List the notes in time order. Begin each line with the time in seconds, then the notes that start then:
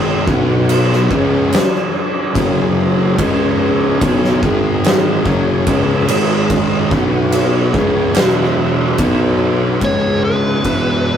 Already playing: G#2 D#3 G#3 D#4 G#4
0.26 B1 B2 F#3 B3 F#4 C#5, kick
0.69 crash
0.93 snare
1.09 C#2 G#2 C#3 C#4 G#4, kick
1.53 snare, crash
2.34 F#1 F#2 C#3 F#3, kick, crash
3.17 C#2 G#2 C#3 C#4 C#5, kick, crash
4.01 B1 B2 F#3 B3, kick, crash
4.24 snare
4.43 G#1 G#2 D#3 G#3 D#4, kick
4.84 snare, crash
5.25 F#1 F#2 C#3 F#3 C#4 C#5, kick
5.66 C#2 G#2 C#3, kick, crash
6.07 G#1 G#2 D#3 G#3 D#4, crash
6.50 kick, crash
6.91 B1 B2 F#3 B3 F#4 C#5, kick
7.32 crash
7.74 C#2 G#2 C#3 C#4 G#4 C#5, kick
8.15 E1 E2 B2 E3 E4 B4 F#5, snare, crash
8.98 B1 B2 F#3 B3 F#4 C#5, kick, crash
9.80 C#2 G#2 C#3 C#4 G#4 C#5, kick, crash
9.85 C#5
10.24 B4
10.64 E1 E2 B2 E3 E4 B4 F#5, kick, crash